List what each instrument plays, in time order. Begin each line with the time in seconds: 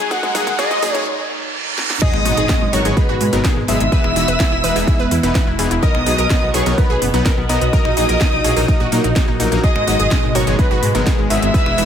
Already playing: ambient pad F#3 D#4 A#5, analog synth lead G#5, riser
0.11 ambient pad A#2 A#3, supersaw synth F#3 A#3 D#4 G#4, synth pluck G#4, analog synth lead F#5, kick, closed hi-hat
0.23 synth pluck G#3, kick, closed hi-hat
0.35 supersaw synth F#3 A#3 D#4 G#4, synth pluck G#4, kick, open hi-hat, high conga
0.47 synth pluck G#3, kick, closed hi-hat, low conga
0.59 supersaw synth F#3 A#3 D#4 G#4, synth pluck G#4, analog synth lead D#5, kick, closed hi-hat
0.71 synth pluck G#3, kick, closed hi-hat
0.82 supersaw synth F#3 A#3 D#4 G#4, synth pluck G#4, kick, open hi-hat
0.95 synth pluck G#3, kick, closed hi-hat
1.06 reverse cymbal
1.78 snare
1.90 snare
2.02 ambient pad B2 G#3 B3 F#4, supersaw synth F#3 B3 D#4 G#4, synth pluck G#4, analog synth lead D#5, violin section D#6, kick, closed hi-hat, crash, impact
2.14 detuned saw bass G#1, synth pluck G#3, finger snap
2.25 detuned saw bass G#1, supersaw synth F#3 B3 D#4 F#4, synth pluck G#3, open hi-hat
2.37 detuned saw bass G#1, synth pluck G#4, closed hi-hat
2.49 supersaw synth F#3 B3 D#4 G#4, synth pluck G#3, kick, snare, closed hi-hat
2.61 detuned saw bass G#1, synth pluck G#3
2.73 detuned saw bass G#1, supersaw synth F#3 B3 D#4 A#4, synth pluck F#4, analog synth lead C#5, violin section C#6, open hi-hat
2.85 detuned saw bass G#1, supersaw synth F#3 B3 D#4 G#4, synth pluck G#3, closed hi-hat
2.97 supersaw synth F#3 B3 D#4 G#4, synth pluck G#3, analog synth lead B4, violin section B5, kick, closed hi-hat
3.09 detuned saw bass G#1, synth pluck F#4
3.21 detuned saw bass G#2, synth pluck G#3, open hi-hat
3.33 detuned saw bass G#1, supersaw synth F#3 B3 D#4 A#4, synth pluck G#3, closed hi-hat
3.44 synth pluck G#4, kick, snare, closed hi-hat
3.57 detuned saw bass G#1, synth pluck G#3
3.68 detuned saw bass G#1, supersaw synth F#3 B3 D#4 G#4, synth pluck G#3, analog synth lead E5, violin section E6, open hi-hat
3.80 detuned saw bass G#1, synth pluck G#3, closed hi-hat
3.92 supersaw synth E3 B3 D#4 G#4, ambient pad G#3 E4, synth pluck B4, kick, closed hi-hat
4.04 detuned saw bass E1, synth pluck E4, finger snap
4.16 detuned saw bass E1, supersaw synth E3 B3 D#4 F#4, synth pluck E4, open hi-hat
4.28 detuned saw bass E1, synth pluck B4, closed hi-hat
4.40 supersaw synth E3 B3 D#4 G#4, synth pluck E4, kick, snare, closed hi-hat
4.52 detuned saw bass E1, synth pluck E4
4.63 detuned saw bass E1, supersaw synth E3 B3 D#4 B4, synth pluck B4, open hi-hat
4.76 detuned saw bass E1, supersaw synth E3 B3 D#4 G#4, synth pluck E4, open hi-hat
4.87 supersaw synth E3 B3 D#4 G#4, synth pluck E4, kick, closed hi-hat
4.99 detuned saw bass E1, synth pluck B4
5.11 detuned saw bass E2, synth pluck E4, open hi-hat
5.23 detuned saw bass E1, supersaw synth E3 B3 D#4 B4, synth pluck E4, closed hi-hat
5.35 supersaw synth E3 B3 D#4 B4, synth pluck B4, kick, snare, closed hi-hat
5.47 detuned saw bass E1, synth pluck E4
5.59 detuned saw bass E1, supersaw synth E3 B3 D#4 G#4, synth pluck E4, open hi-hat
5.71 detuned saw bass E1, synth pluck E4, closed hi-hat
5.83 supersaw synth F#3 B3 D#4 A#4, ambient pad F#4, synth pluck A#4, analog synth lead D#5, violin section D#6, kick, closed hi-hat
5.95 detuned saw bass B1, synth pluck B3, finger snap
6.06 detuned saw bass B1, supersaw synth F#3 B3 D#4 G#4, synth pluck B3, open hi-hat
6.18 detuned saw bass B1, synth pluck A#4, closed hi-hat
6.30 supersaw synth F#3 B3 D#4 A#4, synth pluck B3, kick, snare, closed hi-hat
6.42 detuned saw bass B1, synth pluck B3
6.54 detuned saw bass B1, supersaw synth F#3 B3 D#4 B4, synth pluck G#4, analog synth lead C#5, violin section C#6, open hi-hat
6.66 detuned saw bass B1, supersaw synth F#3 B3 D#4 A#4, synth pluck B3, closed hi-hat
6.78 supersaw synth F#3 B3 D#4 A#4, synth pluck B3, analog synth lead B4, violin section B5, kick, closed hi-hat
6.90 detuned saw bass B1, synth pluck G#4
7.02 detuned saw bass F#1, synth pluck B3, open hi-hat
7.14 detuned saw bass B1, supersaw synth F#3 B3 D#4 B4, synth pluck B3, closed hi-hat
7.25 supersaw synth F#3 B3 D#4 B4, synth pluck A#4, kick, snare, closed hi-hat
7.38 detuned saw bass B1, synth pluck B3
7.49 detuned saw bass B1, supersaw synth F#3 B3 D#4 A#4, synth pluck B3, analog synth lead D#5, violin section D#6, open hi-hat
7.61 detuned saw bass B1, synth pluck B3, closed hi-hat
7.73 ambient pad F#3, supersaw synth F#3 A#3 D#4 A#4, synth pluck A#4, kick, closed hi-hat
7.85 detuned saw bass A#1, synth pluck D#4, finger snap
7.97 detuned saw bass A#1, supersaw synth F#3 A#3 D#4 G#4, synth pluck D#4, open hi-hat
8.09 detuned saw bass A#1, synth pluck A#4, closed hi-hat
8.21 supersaw synth F#3 A#3 D#4 A#4, synth pluck D#4, kick, snare, closed hi-hat
8.33 detuned saw bass A#1, synth pluck D#4
8.44 detuned saw bass A#1, supersaw synth F#3 A#3 D#4 C#5, synth pluck G#4, open hi-hat
8.56 detuned saw bass A#1, supersaw synth F#3 A#3 D#4 A#4, synth pluck D#4, open hi-hat
8.68 supersaw synth F#3 A#3 D#4 A#4, synth pluck D#4, kick, closed hi-hat
8.80 detuned saw bass A#1, synth pluck F#4
8.92 detuned saw bass A#2, supersaw synth F#3 A#3 D#4 A#4, synth pluck D#4, open hi-hat
9.04 detuned saw bass A#1, synth pluck D#4, closed hi-hat
9.16 supersaw synth F#3 A#3 D#4 G#4, synth pluck D#4, kick, snare, closed hi-hat
9.28 detuned saw bass A#1, synth pluck D#4
9.40 detuned saw bass A#1, supersaw synth F#3 A#3 D#4 A#4, synth pluck D#4, open hi-hat
9.52 detuned saw bass A#1, supersaw synth F#3 A#3 D#4 A#4, synth pluck D#4, closed hi-hat
9.64 supersaw synth F#3 D#4 G#4, ambient pad G#3 B3, synth pluck G#4, analog synth lead D#5, violin section D#6, kick, closed hi-hat
9.76 detuned saw bass G#1, synth pluck G#3, finger snap
9.87 detuned saw bass G#1, supersaw synth F#3 B3 D#4 F#4, synth pluck G#3, open hi-hat
9.99 detuned saw bass G#1, synth pluck G#4, closed hi-hat
10.11 supersaw synth F#3 B3 D#4 G#4, synth pluck G#3, kick, snare, closed hi-hat
10.23 detuned saw bass G#1, synth pluck G#3
10.35 detuned saw bass G#1, supersaw synth F#3 B3 D#4 A#4, synth pluck F#4, analog synth lead C#5, violin section C#6, open hi-hat
10.47 detuned saw bass G#1, supersaw synth F#3 B3 D#4 G#4, synth pluck G#3, closed hi-hat
10.59 supersaw synth F#3 B3 D#4 G#4, synth pluck G#3, analog synth lead B4, violin section B5, kick, closed hi-hat
10.71 detuned saw bass G#1, synth pluck F#4
10.83 detuned saw bass G#2, synth pluck G#3, open hi-hat
10.95 detuned saw bass G#1, supersaw synth F#3 B3 D#4 A#4, synth pluck G#3, closed hi-hat
11.06 supersaw synth F#3 B3, synth pluck G#4, kick, snare, closed hi-hat
11.19 detuned saw bass G#1, synth pluck G#3
11.30 detuned saw bass G#1, supersaw synth F#3 B3 D#4 G#4, synth pluck G#3, analog synth lead E5, violin section E6, open hi-hat
11.42 detuned saw bass G#1, synth pluck G#3, closed hi-hat
11.54 supersaw synth E3 B3 D#4 G#4, synth pluck B4, kick, closed hi-hat
11.66 detuned saw bass E1, synth pluck E4, finger snap
11.78 detuned saw bass E1, supersaw synth E3 B3 D#4 F#4, synth pluck E4, open hi-hat